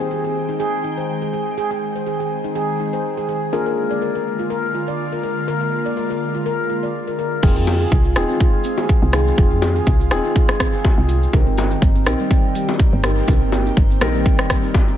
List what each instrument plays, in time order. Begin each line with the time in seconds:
Already playing: ambient pad D#3 G#3 C4 G5, felt piano C4 D#4 G4 G#4
0.00 handpan C5
0.11 handpan G#4
0.24 handpan G#4
0.49 handpan D#4
0.60 handpan G#4
0.84 handpan D#4
0.98 handpan C5
1.22 handpan G#4
1.33 handpan G#4
1.58 handpan G#4
1.71 handpan G#4
1.95 handpan C5
2.07 handpan G#4
2.20 handpan G#4
2.44 handpan D#4
2.55 handpan G#4
2.80 handpan D#4
2.93 handpan C5
3.17 handpan G#4
3.29 handpan G#4
3.53 ambient pad D3 A#3 F4, felt piano A#3 D4 F4 G#4, handpan A#4
3.66 handpan A#4
3.91 handpan D5
4.02 handpan A#4
4.15 handpan A#4
4.39 handpan F4
4.50 handpan A#4
4.74 handpan F4
4.88 handpan D5
5.12 handpan A#4
5.23 handpan A#4
5.48 handpan A#4
5.61 handpan A#4
5.86 handpan D5
5.97 handpan A#4
6.10 handpan A#4
6.35 handpan F4
6.46 handpan A#4
6.70 handpan F4
6.83 handpan D5
7.08 handpan A#4
7.19 handpan A#4
7.43 fm bass F1, ambient pad D#3 G#3 C4 F4, felt piano C4 D#4 F4 G#4, handpan F4, kick, crash, low bongo, cabasa
7.56 fm bass F2, handpan F4
7.67 open hi-hat, high bongo, cabasa
7.81 handpan G#4, cabasa
7.92 fm bass C2, handpan F4, kick, cabasa
8.04 handpan F4, cabasa
8.16 fm bass D#1, felt piano C4 D#4 F4 G#4, cross-stick, open hi-hat, cabasa
8.29 handpan C4, cabasa
8.40 handpan F4, kick, cabasa
8.64 handpan C4, open hi-hat, cabasa
8.78 handpan G#4, high bongo, cabasa
8.88 kick, cabasa
9.02 fm bass C2, handpan F4
9.13 felt piano C4 D#4 F4 G#4, handpan F4, cross-stick, open hi-hat, cabasa
9.27 cabasa
9.38 fm bass F1, felt piano C4 D#4 F4 G#4, handpan F4, kick, cabasa
9.51 fm bass F2, handpan F4
9.62 open hi-hat, high bongo, cabasa
9.76 handpan G#4, cabasa
9.86 fm bass C2, handpan F4, kick, cabasa
10.00 handpan F4, cabasa
10.11 fm bass D#1, felt piano C4 D#4 F4 G#4, cross-stick, open hi-hat, cabasa
10.24 handpan C4, cabasa
10.36 handpan F4, kick, cabasa
10.49 cross-stick
10.60 handpan C4, kick, cross-stick, open hi-hat, cabasa
10.74 handpan G#4, cabasa
10.84 kick, high bongo, cabasa
10.98 fm bass C2, handpan F4
11.09 handpan F4, open hi-hat, cabasa
11.23 cabasa
11.33 fm bass C2, ambient pad A#3 G4, felt piano C4 D#4 G4 A#4, handpan C4, kick, low bongo, cabasa
11.47 fm bass G1, handpan C4
11.58 open hi-hat, high bongo, cabasa
11.71 handpan D#4, cabasa
11.82 fm bass G1, handpan C4, kick, cabasa
11.95 handpan C4, cabasa
12.06 fm bass A#1, felt piano C4 D#4 G4 A#4, cross-stick, open hi-hat, cabasa
12.20 handpan G3, cabasa
12.31 handpan C4, kick, cabasa
12.55 handpan G3, open hi-hat, cabasa
12.69 handpan D#4, high bongo, cabasa
12.80 kick, cabasa
12.93 fm bass G1, handpan C4
13.04 felt piano C4 D#4 G4 A#4, cross-stick, open hi-hat, cabasa
13.17 cabasa
13.28 fm bass C2, handpan C4, felt piano C4 D#4 G4 A#4, kick, low bongo, cabasa
13.41 fm bass G1, handpan C4
13.52 open hi-hat, high bongo, cabasa
13.66 handpan D#4, cabasa
13.77 fm bass G1, handpan C4, kick, cabasa
13.90 handpan C4, cabasa
14.01 fm bass A#1, felt piano C4 D#4 G4 A#4, cross-stick, open hi-hat, low bongo, cabasa
14.14 handpan G3, cabasa
14.26 handpan C4, kick, cabasa
14.39 fm bass G1, cross-stick
14.50 handpan G3, kick, cross-stick, open hi-hat, cabasa
14.63 handpan D#4, cabasa
14.74 kick, high bongo, cabasa
14.88 handpan C4, cabasa